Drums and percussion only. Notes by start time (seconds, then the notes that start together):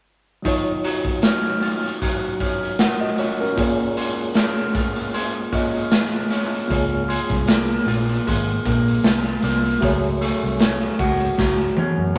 0.45 kick, closed hi-hat
0.84 closed hi-hat
1.05 kick, closed hi-hat
1.22 snare, closed hi-hat
1.44 closed hi-hat
1.62 closed hi-hat
1.83 closed hi-hat
2.02 kick, closed hi-hat
2.23 closed hi-hat
2.40 kick, closed hi-hat
2.63 closed hi-hat
2.79 snare, closed hi-hat
3.18 closed hi-hat
3.41 closed hi-hat
3.58 kick, closed hi-hat
3.79 closed hi-hat
3.97 closed hi-hat
4.17 closed hi-hat
4.34 snare, closed hi-hat
4.75 kick, closed hi-hat
4.96 closed hi-hat
5.14 closed hi-hat
5.53 kick, closed hi-hat
5.75 closed hi-hat
5.91 snare, closed hi-hat
6.30 snare, closed hi-hat
6.53 closed hi-hat
6.70 kick, closed hi-hat
7.10 closed hi-hat
7.30 kick, closed hi-hat
7.47 snare, closed hi-hat
7.88 closed hi-hat
8.09 closed hi-hat
8.27 kick, closed hi-hat
8.66 kick, closed hi-hat
8.88 closed hi-hat
9.04 snare, closed hi-hat
9.42 snare, closed hi-hat
9.65 closed hi-hat
9.82 kick, closed hi-hat
10.04 closed hi-hat
10.22 closed hi-hat
10.42 closed hi-hat
10.59 snare, closed hi-hat
10.82 closed hi-hat
10.99 kick, closed hi-hat
11.20 closed hi-hat
11.38 kick, snare
11.77 high tom